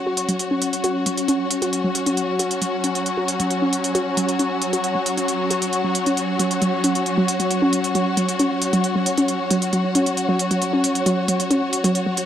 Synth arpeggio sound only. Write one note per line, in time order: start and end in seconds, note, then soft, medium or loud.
0.06 0.12 F#4 loud
0.29 0.32 F#3 medium
0.51 0.57 C#4 medium
0.84 0.90 F#4 loud
1.06 1.10 F#3 medium
1.28 1.35 C#4 medium
1.62 1.68 F#4 loud
1.84 1.88 F#3 medium
2.06 2.12 C#4 medium
2.39 2.46 F#4 loud
2.62 2.65 F#3 medium
2.84 2.90 C#4 medium
3.17 3.23 F#4 loud
3.40 3.43 F#3 medium
3.62 3.68 C#4 medium
3.95 4.01 F#4 loud
4.17 4.21 F#3 medium
4.39 4.46 C#4 medium
4.73 4.79 F#4 loud
4.95 4.99 F#3 medium
5.17 5.23 C#4 medium
5.51 5.57 F#4 loud
5.84 5.88 F#3 medium
6.06 6.12 C#4 medium
6.39 6.43 F#3 loud
6.62 6.65 F#3 medium
6.84 6.90 C#4 medium
7.17 7.21 F#3 loud
7.40 7.43 F#3 medium
7.62 7.68 C#4 medium
7.95 7.99 F#3 loud
8.17 8.21 F#3 medium
8.40 8.46 C#4 medium
8.73 8.77 F#3 loud
8.95 8.99 F#3 medium
9.18 9.24 C#4 medium
9.51 9.54 F#3 loud
9.73 9.77 F#3 medium
9.95 10.01 C#4 medium
10.29 10.32 F#3 loud
10.51 10.54 F#3 medium
10.73 10.79 C#4 medium
11.06 11.10 F#3 loud
11.28 11.32 F#3 medium
11.51 11.57 C#4 medium
11.84 11.88 F#3 loud
12.06 12.10 F#3 medium